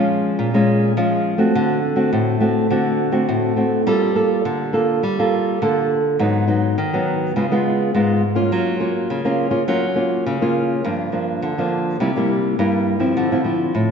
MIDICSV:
0, 0, Header, 1, 2, 480
1, 0, Start_track
1, 0, Tempo, 580833
1, 1277, Time_signature, 4, 2, 24, 8
1, 11496, End_track
2, 0, Start_track
2, 0, Title_t, "Nylon-string guitar"
2, 0, Program_c, 0, 24
2, 0, Note_on_c, 0, 53, 64
2, 0, Note_on_c, 0, 56, 60
2, 0, Note_on_c, 0, 61, 62
2, 0, Note_on_c, 0, 65, 64
2, 295, Note_off_c, 0, 53, 0
2, 321, Note_on_c, 0, 46, 68
2, 402, Note_off_c, 0, 56, 0
2, 403, Note_off_c, 0, 61, 0
2, 404, Note_off_c, 0, 65, 0
2, 447, Note_on_c, 0, 56, 65
2, 452, Note_on_c, 0, 61, 66
2, 456, Note_on_c, 0, 65, 73
2, 764, Note_off_c, 0, 56, 0
2, 765, Note_off_c, 0, 61, 0
2, 768, Note_off_c, 0, 65, 0
2, 775, Note_off_c, 0, 46, 0
2, 802, Note_on_c, 0, 53, 75
2, 805, Note_on_c, 0, 56, 58
2, 807, Note_on_c, 0, 61, 53
2, 813, Note_on_c, 0, 65, 65
2, 1122, Note_off_c, 0, 56, 0
2, 1124, Note_off_c, 0, 61, 0
2, 1126, Note_off_c, 0, 65, 0
2, 1140, Note_on_c, 0, 57, 63
2, 1145, Note_on_c, 0, 60, 67
2, 1149, Note_on_c, 0, 66, 71
2, 1256, Note_off_c, 0, 53, 0
2, 1284, Note_on_c, 0, 50, 72
2, 1470, Note_off_c, 0, 57, 0
2, 1473, Note_off_c, 0, 60, 0
2, 1473, Note_off_c, 0, 66, 0
2, 1617, Note_on_c, 0, 57, 60
2, 1621, Note_on_c, 0, 60, 55
2, 1625, Note_on_c, 0, 66, 63
2, 1737, Note_off_c, 0, 50, 0
2, 1757, Note_on_c, 0, 45, 71
2, 1949, Note_off_c, 0, 57, 0
2, 1952, Note_off_c, 0, 60, 0
2, 1952, Note_off_c, 0, 66, 0
2, 1986, Note_on_c, 0, 57, 65
2, 1991, Note_on_c, 0, 60, 58
2, 1996, Note_on_c, 0, 66, 61
2, 2194, Note_off_c, 0, 57, 0
2, 2196, Note_off_c, 0, 60, 0
2, 2198, Note_off_c, 0, 66, 0
2, 2214, Note_off_c, 0, 45, 0
2, 2235, Note_on_c, 0, 50, 65
2, 2239, Note_on_c, 0, 57, 51
2, 2242, Note_on_c, 0, 60, 56
2, 2246, Note_on_c, 0, 66, 63
2, 2560, Note_off_c, 0, 57, 0
2, 2562, Note_off_c, 0, 60, 0
2, 2564, Note_off_c, 0, 66, 0
2, 2577, Note_on_c, 0, 57, 65
2, 2581, Note_on_c, 0, 60, 66
2, 2584, Note_on_c, 0, 66, 73
2, 2693, Note_off_c, 0, 50, 0
2, 2715, Note_on_c, 0, 45, 69
2, 2910, Note_off_c, 0, 57, 0
2, 2911, Note_off_c, 0, 60, 0
2, 2913, Note_off_c, 0, 66, 0
2, 2944, Note_on_c, 0, 57, 56
2, 2951, Note_on_c, 0, 60, 56
2, 2955, Note_on_c, 0, 66, 61
2, 3154, Note_off_c, 0, 57, 0
2, 3156, Note_off_c, 0, 60, 0
2, 3158, Note_off_c, 0, 66, 0
2, 3173, Note_off_c, 0, 45, 0
2, 3196, Note_on_c, 0, 55, 73
2, 3200, Note_on_c, 0, 65, 60
2, 3202, Note_on_c, 0, 58, 53
2, 3204, Note_on_c, 0, 69, 69
2, 3401, Note_off_c, 0, 58, 0
2, 3401, Note_off_c, 0, 65, 0
2, 3402, Note_off_c, 0, 69, 0
2, 3429, Note_on_c, 0, 58, 51
2, 3433, Note_on_c, 0, 65, 51
2, 3437, Note_on_c, 0, 69, 60
2, 3654, Note_off_c, 0, 55, 0
2, 3679, Note_on_c, 0, 50, 67
2, 3876, Note_off_c, 0, 58, 0
2, 3877, Note_off_c, 0, 65, 0
2, 3880, Note_off_c, 0, 69, 0
2, 3908, Note_on_c, 0, 58, 58
2, 3914, Note_on_c, 0, 65, 59
2, 3917, Note_on_c, 0, 69, 61
2, 4136, Note_off_c, 0, 50, 0
2, 4139, Note_off_c, 0, 58, 0
2, 4142, Note_off_c, 0, 65, 0
2, 4144, Note_off_c, 0, 69, 0
2, 4159, Note_on_c, 0, 55, 65
2, 4288, Note_on_c, 0, 58, 63
2, 4294, Note_on_c, 0, 65, 68
2, 4297, Note_on_c, 0, 69, 67
2, 4606, Note_off_c, 0, 58, 0
2, 4608, Note_off_c, 0, 65, 0
2, 4610, Note_off_c, 0, 69, 0
2, 4616, Note_off_c, 0, 55, 0
2, 4643, Note_on_c, 0, 50, 69
2, 4647, Note_on_c, 0, 58, 56
2, 4650, Note_on_c, 0, 69, 63
2, 4652, Note_on_c, 0, 65, 54
2, 4952, Note_off_c, 0, 58, 0
2, 4953, Note_off_c, 0, 65, 0
2, 4955, Note_off_c, 0, 69, 0
2, 5099, Note_off_c, 0, 50, 0
2, 5119, Note_on_c, 0, 44, 75
2, 5123, Note_on_c, 0, 54, 62
2, 5124, Note_on_c, 0, 59, 57
2, 5128, Note_on_c, 0, 63, 61
2, 5323, Note_off_c, 0, 54, 0
2, 5324, Note_off_c, 0, 59, 0
2, 5325, Note_off_c, 0, 63, 0
2, 5351, Note_on_c, 0, 54, 61
2, 5354, Note_on_c, 0, 59, 52
2, 5359, Note_on_c, 0, 63, 61
2, 5576, Note_off_c, 0, 44, 0
2, 5581, Note_off_c, 0, 54, 0
2, 5583, Note_off_c, 0, 59, 0
2, 5584, Note_off_c, 0, 63, 0
2, 5602, Note_on_c, 0, 51, 68
2, 5731, Note_on_c, 0, 54, 67
2, 5735, Note_on_c, 0, 59, 67
2, 5738, Note_on_c, 0, 63, 75
2, 6057, Note_off_c, 0, 51, 0
2, 6067, Note_off_c, 0, 54, 0
2, 6068, Note_off_c, 0, 59, 0
2, 6070, Note_off_c, 0, 63, 0
2, 6082, Note_on_c, 0, 49, 70
2, 6085, Note_on_c, 0, 56, 50
2, 6090, Note_on_c, 0, 59, 64
2, 6090, Note_on_c, 0, 65, 64
2, 6154, Note_off_c, 0, 56, 0
2, 6155, Note_off_c, 0, 59, 0
2, 6158, Note_off_c, 0, 65, 0
2, 6210, Note_on_c, 0, 56, 64
2, 6215, Note_on_c, 0, 59, 66
2, 6220, Note_on_c, 0, 65, 70
2, 6528, Note_off_c, 0, 56, 0
2, 6528, Note_off_c, 0, 59, 0
2, 6532, Note_off_c, 0, 65, 0
2, 6538, Note_off_c, 0, 49, 0
2, 6566, Note_on_c, 0, 44, 70
2, 6566, Note_on_c, 0, 56, 55
2, 6571, Note_on_c, 0, 59, 58
2, 6573, Note_on_c, 0, 65, 64
2, 6788, Note_off_c, 0, 56, 0
2, 6790, Note_off_c, 0, 59, 0
2, 6792, Note_off_c, 0, 65, 0
2, 6902, Note_on_c, 0, 58, 64
2, 6905, Note_on_c, 0, 61, 60
2, 6909, Note_on_c, 0, 65, 72
2, 7020, Note_off_c, 0, 44, 0
2, 7042, Note_on_c, 0, 54, 74
2, 7233, Note_off_c, 0, 58, 0
2, 7235, Note_off_c, 0, 61, 0
2, 7236, Note_off_c, 0, 65, 0
2, 7270, Note_on_c, 0, 58, 49
2, 7274, Note_on_c, 0, 61, 50
2, 7275, Note_on_c, 0, 65, 56
2, 7497, Note_off_c, 0, 54, 0
2, 7522, Note_on_c, 0, 49, 66
2, 7597, Note_off_c, 0, 58, 0
2, 7598, Note_off_c, 0, 61, 0
2, 7599, Note_off_c, 0, 65, 0
2, 7642, Note_on_c, 0, 58, 70
2, 7646, Note_on_c, 0, 61, 63
2, 7652, Note_on_c, 0, 65, 74
2, 7843, Note_off_c, 0, 58, 0
2, 7845, Note_off_c, 0, 61, 0
2, 7847, Note_off_c, 0, 65, 0
2, 7854, Note_on_c, 0, 58, 64
2, 7859, Note_on_c, 0, 61, 62
2, 7859, Note_on_c, 0, 65, 68
2, 7949, Note_off_c, 0, 58, 0
2, 7950, Note_off_c, 0, 61, 0
2, 7951, Note_off_c, 0, 65, 0
2, 7977, Note_off_c, 0, 49, 0
2, 7999, Note_on_c, 0, 54, 69
2, 8002, Note_on_c, 0, 58, 58
2, 8003, Note_on_c, 0, 61, 53
2, 8007, Note_on_c, 0, 65, 58
2, 8141, Note_off_c, 0, 58, 0
2, 8143, Note_off_c, 0, 61, 0
2, 8145, Note_off_c, 0, 65, 0
2, 8227, Note_on_c, 0, 58, 62
2, 8231, Note_on_c, 0, 61, 57
2, 8238, Note_on_c, 0, 65, 57
2, 8456, Note_off_c, 0, 54, 0
2, 8482, Note_on_c, 0, 49, 73
2, 8555, Note_off_c, 0, 58, 0
2, 8558, Note_off_c, 0, 61, 0
2, 8559, Note_off_c, 0, 65, 0
2, 8607, Note_on_c, 0, 58, 61
2, 8611, Note_on_c, 0, 61, 61
2, 8612, Note_on_c, 0, 65, 71
2, 8926, Note_off_c, 0, 58, 0
2, 8926, Note_off_c, 0, 61, 0
2, 8928, Note_off_c, 0, 65, 0
2, 8937, Note_off_c, 0, 49, 0
2, 8962, Note_on_c, 0, 43, 74
2, 8965, Note_on_c, 0, 53, 54
2, 8969, Note_on_c, 0, 58, 58
2, 8969, Note_on_c, 0, 62, 66
2, 9163, Note_off_c, 0, 53, 0
2, 9164, Note_off_c, 0, 58, 0
2, 9166, Note_off_c, 0, 62, 0
2, 9189, Note_on_c, 0, 53, 53
2, 9193, Note_on_c, 0, 58, 55
2, 9196, Note_on_c, 0, 62, 56
2, 9417, Note_off_c, 0, 43, 0
2, 9441, Note_on_c, 0, 50, 62
2, 9516, Note_off_c, 0, 53, 0
2, 9518, Note_off_c, 0, 58, 0
2, 9519, Note_off_c, 0, 62, 0
2, 9572, Note_on_c, 0, 53, 61
2, 9576, Note_on_c, 0, 58, 65
2, 9578, Note_on_c, 0, 62, 76
2, 9896, Note_off_c, 0, 50, 0
2, 9907, Note_off_c, 0, 53, 0
2, 9907, Note_off_c, 0, 58, 0
2, 9909, Note_off_c, 0, 62, 0
2, 9918, Note_on_c, 0, 48, 73
2, 9923, Note_on_c, 0, 55, 58
2, 9924, Note_on_c, 0, 58, 57
2, 9929, Note_on_c, 0, 64, 67
2, 10001, Note_off_c, 0, 55, 0
2, 10004, Note_off_c, 0, 58, 0
2, 10005, Note_off_c, 0, 64, 0
2, 10051, Note_on_c, 0, 55, 67
2, 10054, Note_on_c, 0, 58, 55
2, 10058, Note_on_c, 0, 64, 74
2, 10366, Note_off_c, 0, 55, 0
2, 10368, Note_off_c, 0, 58, 0
2, 10370, Note_off_c, 0, 64, 0
2, 10375, Note_off_c, 0, 48, 0
2, 10403, Note_on_c, 0, 43, 73
2, 10404, Note_on_c, 0, 55, 55
2, 10407, Note_on_c, 0, 58, 66
2, 10412, Note_on_c, 0, 64, 62
2, 10722, Note_off_c, 0, 55, 0
2, 10725, Note_off_c, 0, 58, 0
2, 10726, Note_off_c, 0, 64, 0
2, 10739, Note_on_c, 0, 53, 62
2, 10743, Note_on_c, 0, 60, 69
2, 10745, Note_on_c, 0, 64, 66
2, 10857, Note_off_c, 0, 43, 0
2, 10882, Note_on_c, 0, 50, 75
2, 10995, Note_off_c, 0, 53, 0
2, 10998, Note_off_c, 0, 60, 0
2, 11001, Note_off_c, 0, 64, 0
2, 11004, Note_on_c, 0, 53, 69
2, 11010, Note_on_c, 0, 60, 56
2, 11011, Note_on_c, 0, 64, 62
2, 11084, Note_off_c, 0, 53, 0
2, 11085, Note_off_c, 0, 60, 0
2, 11086, Note_off_c, 0, 64, 0
2, 11109, Note_on_c, 0, 53, 50
2, 11116, Note_on_c, 0, 60, 49
2, 11117, Note_on_c, 0, 64, 51
2, 11336, Note_off_c, 0, 50, 0
2, 11360, Note_on_c, 0, 45, 64
2, 11496, Note_off_c, 0, 45, 0
2, 11496, Note_off_c, 0, 53, 0
2, 11496, Note_off_c, 0, 60, 0
2, 11496, Note_off_c, 0, 64, 0
2, 11496, End_track
0, 0, End_of_file